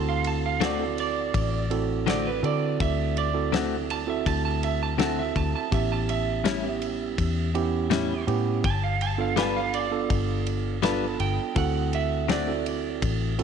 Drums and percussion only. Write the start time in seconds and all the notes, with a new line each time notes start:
0.24 ride
0.61 snare, ride
0.98 ride
1.34 kick, ride
1.71 ride
2.07 snare, ride
2.44 ride
2.80 kick, ride
3.17 ride
3.54 snare, ride
3.90 ride
4.26 kick, ride
4.63 ride
4.99 snare, ride
5.36 kick, ride
5.72 kick, ride
6.09 ride
6.45 snare, ride
6.82 ride
7.18 kick, ride
7.55 ride
7.91 snare, ride
8.28 ride
8.64 kick, ride
9.01 ride
9.37 snare, ride
9.74 ride
10.10 kick, ride
10.47 ride
10.83 snare, ride
11.20 ride
11.56 kick, ride
11.93 ride
12.29 snare, ride
12.66 ride
13.02 kick, ride
13.39 ride